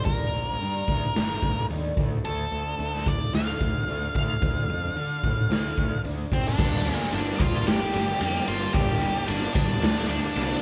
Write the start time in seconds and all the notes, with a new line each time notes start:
Already playing: A4
0.05 G1 G2 D3 G3 A#3 D4 A#4, kick, open hi-hat
0.33 A#1 G3 A#3 D4
0.48 G3 A#3 D4
0.60 G2 D3 G3 A#3 D4, open hi-hat
0.87 D2 G3 A#3 D4, kick
1.02 G3 A#3 D4
1.15 G1, snare, open hi-hat
1.29 G3 A#3 D4
1.42 G1 G3 A#3 D4 A4, kick
1.55 G3 A#3 D4 A4
1.69 D#2 G2 D3 G3 A#3 D4 A4, open hi-hat
1.97 D2 D3 D4 F4 A4, kick
2.24 D2 D3 D4 F4 A4, open hi-hat
2.51 D2 D3 D4 F4 A4
2.66 D4 F4 A4
2.79 D2 D3 D4 F4 A4, open hi-hat
2.94 snare
3.06 D3 D4 F4 A4 D5, kick
3.20 D4 F4 A4
3.33 D2 F5, snare, open hi-hat
3.47 D4 F4 A4
3.60 D2 D3 D4 F4 A4, kick
3.74 D4 F4 A4
3.87 D2 D3 D4 F4 A4, open hi-hat
4.15 D2 D3 D4 F4 A4 F5, kick
4.42 D2 D3 D4 F4 A4, kick, open hi-hat
4.69 F2 D3 D4 F4 A4
4.83 D4 F4 A4
4.96 D3 D4 F4 A4, open hi-hat
5.23 A2 D3 D4 F4 A4, kick
5.37 D4 F4 A4
5.50 D2, snare, open hi-hat
5.64 D4 F4 A4
5.77 D2 D3 D4 F4 A4, kick
5.91 D4 F4 A4
6.04 D2 D3 D4 F4 A4, open hi-hat
6.31 F#1 D3 C4 D4 F4 A4 C5, kick
6.47 D4 D5
6.58 G1 G2 D3 G3 A#3 D4 G4 A#4 D5 A5, kick, crash
6.85 D2 D3 G3 A#3 D4, ride
6.95 C5
6.99 G3 A#3 D4, snare
7.12 G1 G2 D3 G3 A#3 D4 D5, ride
7.26 G3 A#3 D4
7.39 D2 D3 G3 A#3 D4 F4 F5, muted overdriven electric guitar stroke, kick, ride
7.53 G3 A#3 D4
7.67 G1 G4 G5, snare, ride
7.80 G3 A#3 D4
7.93 G1 D3 G3 A#3 D4, ride
8.07 G3 A#3 D4
8.20 F2 G2 D3 G3 A#3 D4, ride
8.34 G3 A#3 D4
8.46 G1 D3 G3 A#3 D4 F4 F5, ride
8.61 G3 A#3 D4
8.74 G1 G2 D3 G3 A#3 D4 G4 G5, kick, ride
9.01 D3 G3 A#3 D4, ride
9.14 G3 A#3 D4
9.27 G1 G2 D3 G3 A#3 D4 D5, ride
9.41 G3 A#3 D4
9.54 D2 D3 G3 A#3 D4 D5, muted overdriven electric guitar stroke, kick, ride
9.68 G3 A#3 D4
9.82 D2, snare, ride
9.95 G3 A#3 D4
10.08 D3 G3 A#3 D4 D5, ride
10.22 G3 A#3 D4
10.36 C2 G2 D3 G3 A#3 D4, ride
10.49 G3 A#3 D4